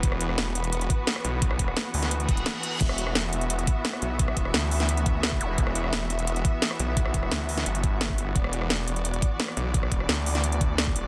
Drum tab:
CC |----------------|----------------|x---------------|----------------|
HH |x-x-x-xxxxx-x-x-|x-x-x-oxxxxxx-x-|x-x-x-xxxxx-x-x-|x-x-x-oxxxx-x-x-|
SD |-r-ro-------or--|-r-ro--o----o---|-r-ro-------or--|-r-ro--o----o---|
BD |o---------o-----|o-o-------o-----|o---------o-----|o-o-------o--o--|

CC |----------------|----------------|----------------|----------------|
HH |x-x-x-xxxxx-x-x-|x-x-x-oxxxx-x-x-|x-x-x-xxxxx-x-x-|x-x-x-oxxxx-x-x-|
SD |-r-ro-------or--|-r-ro--o----o---|-r-ro-------or--|-r-ro--o----o---|
BD |o---------o-----|o-o-------o--o--|o---------o-----|o-o-------o--o--|